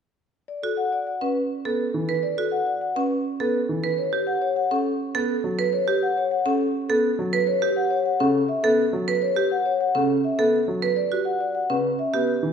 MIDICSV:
0, 0, Header, 1, 4, 480
1, 0, Start_track
1, 0, Tempo, 582524
1, 402, Time_signature, 3, 2, 24, 8
1, 10324, End_track
2, 0, Start_track
2, 0, Title_t, "Vibraphone"
2, 0, Program_c, 0, 11
2, 397, Note_on_c, 0, 74, 54
2, 516, Note_on_c, 0, 69, 49
2, 556, Note_off_c, 0, 74, 0
2, 636, Note_on_c, 0, 78, 53
2, 676, Note_off_c, 0, 69, 0
2, 760, Note_on_c, 0, 74, 55
2, 796, Note_off_c, 0, 78, 0
2, 881, Note_on_c, 0, 78, 47
2, 917, Note_off_c, 0, 74, 0
2, 1000, Note_on_c, 0, 71, 52
2, 1037, Note_off_c, 0, 78, 0
2, 1157, Note_off_c, 0, 71, 0
2, 1358, Note_on_c, 0, 71, 50
2, 1517, Note_off_c, 0, 71, 0
2, 1837, Note_on_c, 0, 74, 63
2, 1954, Note_on_c, 0, 69, 51
2, 1996, Note_off_c, 0, 74, 0
2, 2073, Note_on_c, 0, 78, 51
2, 2115, Note_off_c, 0, 69, 0
2, 2196, Note_on_c, 0, 74, 58
2, 2235, Note_off_c, 0, 78, 0
2, 2318, Note_on_c, 0, 78, 53
2, 2356, Note_off_c, 0, 74, 0
2, 2436, Note_on_c, 0, 71, 46
2, 2476, Note_off_c, 0, 78, 0
2, 2596, Note_off_c, 0, 71, 0
2, 2801, Note_on_c, 0, 71, 56
2, 2958, Note_off_c, 0, 71, 0
2, 3280, Note_on_c, 0, 73, 57
2, 3400, Note_on_c, 0, 67, 50
2, 3437, Note_off_c, 0, 73, 0
2, 3517, Note_on_c, 0, 78, 52
2, 3557, Note_off_c, 0, 67, 0
2, 3639, Note_on_c, 0, 73, 63
2, 3676, Note_off_c, 0, 78, 0
2, 3760, Note_on_c, 0, 78, 56
2, 3797, Note_off_c, 0, 73, 0
2, 3879, Note_on_c, 0, 69, 51
2, 3917, Note_off_c, 0, 78, 0
2, 4037, Note_off_c, 0, 69, 0
2, 4241, Note_on_c, 0, 69, 58
2, 4397, Note_off_c, 0, 69, 0
2, 4722, Note_on_c, 0, 73, 69
2, 4843, Note_on_c, 0, 67, 56
2, 4878, Note_off_c, 0, 73, 0
2, 4965, Note_on_c, 0, 78, 59
2, 4998, Note_off_c, 0, 67, 0
2, 5087, Note_on_c, 0, 73, 66
2, 5119, Note_off_c, 0, 78, 0
2, 5201, Note_on_c, 0, 78, 56
2, 5240, Note_off_c, 0, 73, 0
2, 5319, Note_on_c, 0, 69, 56
2, 5358, Note_off_c, 0, 78, 0
2, 5477, Note_off_c, 0, 69, 0
2, 5675, Note_on_c, 0, 69, 58
2, 5835, Note_off_c, 0, 69, 0
2, 6156, Note_on_c, 0, 73, 70
2, 6277, Note_on_c, 0, 67, 60
2, 6316, Note_off_c, 0, 73, 0
2, 6397, Note_on_c, 0, 78, 57
2, 6436, Note_off_c, 0, 67, 0
2, 6514, Note_on_c, 0, 73, 68
2, 6556, Note_off_c, 0, 78, 0
2, 6637, Note_on_c, 0, 78, 57
2, 6675, Note_off_c, 0, 73, 0
2, 6754, Note_on_c, 0, 69, 59
2, 6796, Note_off_c, 0, 78, 0
2, 6915, Note_off_c, 0, 69, 0
2, 6992, Note_on_c, 0, 76, 63
2, 7112, Note_on_c, 0, 69, 66
2, 7154, Note_off_c, 0, 76, 0
2, 7274, Note_off_c, 0, 69, 0
2, 7596, Note_on_c, 0, 73, 70
2, 7715, Note_on_c, 0, 67, 62
2, 7756, Note_off_c, 0, 73, 0
2, 7840, Note_on_c, 0, 78, 56
2, 7876, Note_off_c, 0, 67, 0
2, 7957, Note_on_c, 0, 73, 67
2, 7997, Note_off_c, 0, 78, 0
2, 8080, Note_on_c, 0, 78, 61
2, 8116, Note_off_c, 0, 73, 0
2, 8200, Note_on_c, 0, 69, 56
2, 8237, Note_off_c, 0, 78, 0
2, 8357, Note_off_c, 0, 69, 0
2, 8440, Note_on_c, 0, 76, 57
2, 8557, Note_on_c, 0, 69, 59
2, 8597, Note_off_c, 0, 76, 0
2, 8716, Note_off_c, 0, 69, 0
2, 9034, Note_on_c, 0, 74, 70
2, 9156, Note_on_c, 0, 67, 55
2, 9195, Note_off_c, 0, 74, 0
2, 9271, Note_on_c, 0, 78, 54
2, 9316, Note_off_c, 0, 67, 0
2, 9397, Note_on_c, 0, 74, 66
2, 9434, Note_off_c, 0, 78, 0
2, 9515, Note_on_c, 0, 78, 55
2, 9556, Note_off_c, 0, 74, 0
2, 9638, Note_on_c, 0, 71, 55
2, 9676, Note_off_c, 0, 78, 0
2, 9797, Note_off_c, 0, 71, 0
2, 9880, Note_on_c, 0, 76, 55
2, 10001, Note_on_c, 0, 71, 58
2, 10037, Note_off_c, 0, 76, 0
2, 10158, Note_off_c, 0, 71, 0
2, 10324, End_track
3, 0, Start_track
3, 0, Title_t, "Marimba"
3, 0, Program_c, 1, 12
3, 523, Note_on_c, 1, 66, 46
3, 678, Note_off_c, 1, 66, 0
3, 1000, Note_on_c, 1, 61, 48
3, 1157, Note_off_c, 1, 61, 0
3, 1362, Note_on_c, 1, 69, 51
3, 1518, Note_off_c, 1, 69, 0
3, 1720, Note_on_c, 1, 71, 49
3, 1877, Note_off_c, 1, 71, 0
3, 1962, Note_on_c, 1, 66, 48
3, 2118, Note_off_c, 1, 66, 0
3, 2442, Note_on_c, 1, 61, 57
3, 2598, Note_off_c, 1, 61, 0
3, 2802, Note_on_c, 1, 69, 52
3, 2958, Note_off_c, 1, 69, 0
3, 3161, Note_on_c, 1, 71, 52
3, 3317, Note_off_c, 1, 71, 0
3, 3401, Note_on_c, 1, 67, 52
3, 3557, Note_off_c, 1, 67, 0
3, 3883, Note_on_c, 1, 61, 52
3, 4038, Note_off_c, 1, 61, 0
3, 4242, Note_on_c, 1, 69, 59
3, 4398, Note_off_c, 1, 69, 0
3, 4603, Note_on_c, 1, 71, 54
3, 4758, Note_off_c, 1, 71, 0
3, 4842, Note_on_c, 1, 67, 53
3, 4998, Note_off_c, 1, 67, 0
3, 5320, Note_on_c, 1, 61, 59
3, 5477, Note_off_c, 1, 61, 0
3, 5682, Note_on_c, 1, 69, 57
3, 5838, Note_off_c, 1, 69, 0
3, 6040, Note_on_c, 1, 71, 61
3, 6197, Note_off_c, 1, 71, 0
3, 6280, Note_on_c, 1, 67, 56
3, 6437, Note_off_c, 1, 67, 0
3, 6760, Note_on_c, 1, 61, 59
3, 6917, Note_off_c, 1, 61, 0
3, 7118, Note_on_c, 1, 69, 59
3, 7277, Note_off_c, 1, 69, 0
3, 7481, Note_on_c, 1, 71, 57
3, 7637, Note_off_c, 1, 71, 0
3, 7716, Note_on_c, 1, 67, 56
3, 7876, Note_off_c, 1, 67, 0
3, 8198, Note_on_c, 1, 61, 58
3, 8357, Note_off_c, 1, 61, 0
3, 8560, Note_on_c, 1, 69, 57
3, 8717, Note_off_c, 1, 69, 0
3, 8919, Note_on_c, 1, 71, 58
3, 9077, Note_off_c, 1, 71, 0
3, 9160, Note_on_c, 1, 66, 52
3, 9317, Note_off_c, 1, 66, 0
3, 9640, Note_on_c, 1, 61, 57
3, 9797, Note_off_c, 1, 61, 0
3, 10000, Note_on_c, 1, 67, 55
3, 10157, Note_off_c, 1, 67, 0
3, 10324, End_track
4, 0, Start_track
4, 0, Title_t, "Grand piano"
4, 0, Program_c, 2, 0
4, 1362, Note_on_c, 2, 59, 46
4, 1518, Note_off_c, 2, 59, 0
4, 1600, Note_on_c, 2, 52, 51
4, 1757, Note_off_c, 2, 52, 0
4, 2802, Note_on_c, 2, 59, 52
4, 2958, Note_off_c, 2, 59, 0
4, 3041, Note_on_c, 2, 52, 50
4, 3197, Note_off_c, 2, 52, 0
4, 4243, Note_on_c, 2, 59, 56
4, 4398, Note_off_c, 2, 59, 0
4, 4481, Note_on_c, 2, 54, 54
4, 4637, Note_off_c, 2, 54, 0
4, 5683, Note_on_c, 2, 59, 57
4, 5838, Note_off_c, 2, 59, 0
4, 5922, Note_on_c, 2, 54, 58
4, 6078, Note_off_c, 2, 54, 0
4, 6759, Note_on_c, 2, 49, 64
4, 6917, Note_off_c, 2, 49, 0
4, 7119, Note_on_c, 2, 59, 62
4, 7277, Note_off_c, 2, 59, 0
4, 7357, Note_on_c, 2, 54, 55
4, 7516, Note_off_c, 2, 54, 0
4, 8200, Note_on_c, 2, 49, 64
4, 8357, Note_off_c, 2, 49, 0
4, 8560, Note_on_c, 2, 59, 55
4, 8717, Note_off_c, 2, 59, 0
4, 8799, Note_on_c, 2, 54, 51
4, 8957, Note_off_c, 2, 54, 0
4, 9640, Note_on_c, 2, 49, 56
4, 9797, Note_off_c, 2, 49, 0
4, 10001, Note_on_c, 2, 59, 50
4, 10157, Note_off_c, 2, 59, 0
4, 10240, Note_on_c, 2, 52, 52
4, 10324, Note_off_c, 2, 52, 0
4, 10324, End_track
0, 0, End_of_file